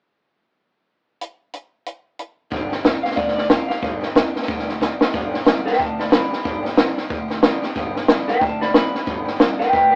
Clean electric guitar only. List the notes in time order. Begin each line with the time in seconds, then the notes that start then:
3.03 F5
3.16 D5
3.36 D5
3.50 F5
3.69 F5
5.66 B4 G5
5.79 F5 A5
5.99 D5 B5
6.12 B5
8.28 B4 G5
8.41 F5 A5
8.61 D5 B5
8.74 B5
9.59 B4 G5
9.72 B4 G5
9.91 B4 G5